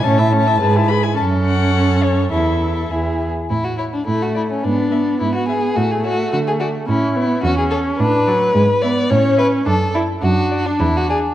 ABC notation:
X:1
M:2/4
L:1/16
Q:1/4=106
K:A
V:1 name="Violin"
a6 b g | a2 f4 c2 | e4 z4 | z2 c2 z2 d2 |
z2 e2 z2 e2 | z2 c2 z2 d2 | z2 c2 z2 c2 | z2 d2 z2 e2 |
z2 e2 z2 d2 | z2 d2 z2 d2 |]
V:2 name="Violin"
c e c e B G B G | A8 | A4 G3 z | E F E D E F E C |
D4 E F G2 | F G F2 F G F2 | E4 F G A2 | B6 d2 |
c2 B2 A2 z2 | F3 D E F G2 |]
V:3 name="Viola"
C E C E G E G E | C8 | E4 E3 z | z4 A,4 |
B,2 B,6 | A,8 | C2 B,2 C4 | D2 F,2 G,2 B,2 |
C4 D2 E2 | D8 |]
V:4 name="Cello" clef=bass
A,,4 G,,4 | F,,8 | E,,4 E,,2 z2 | A,,4 A,,4 |
G,,4 G,,4 | A,,4 D,4 | A,,4 E,,4 | A,,4 G,,4 |
A,,4 F,,4 | F,,4 E,,4 |]